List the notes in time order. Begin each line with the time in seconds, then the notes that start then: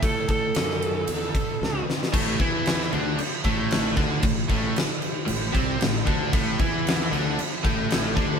0.02 A2 A4, kick, ride
0.28 A4, kick, ride
0.55 F#2, snare, ride
0.71 snare
0.82 ride
1.07 E2, ride
1.35 muted fingered electric bass stroke, kick, ride
1.62 C#2, snare
1.87 muted fingered electric bass stroke, snare
2.03 snare
2.13 A1 A2 A3, kick, crash
2.39 E2 E3 E4, kick, crash
2.66 snare, crash
2.82 snare
2.92 D2 D3 D4, crash
3.19 muted overdriven electric guitar stroke, muted fingered electric bass stroke, crash
3.44 A1 A2 A3, kick, crash
3.71 snare, crash
3.96 D2 D3 D4, kick, crash
4.22 A1 A2, kick, crash
4.48 A1 A2 A3, kick, crash
4.76 snare, crash
5.02 crash
5.26 A1 A2, crash
5.52 C2 C3 C4, kick, crash
5.78 A1 A2, crash
5.82 snare
6.05 D2 D3 D4, kick, crash
6.33 A1 A2 A3, kick, crash
6.60 E2 E3 E4, kick, crash
6.87 snare, crash
7.01 snare
7.11 D2 D3 D4, crash
7.38 muted overdriven electric guitar stroke, muted fingered electric bass stroke, crash
7.64 A1 A2 A3, kick, crash
7.90 snare, crash
8.15 D2 D3 D4, kick, crash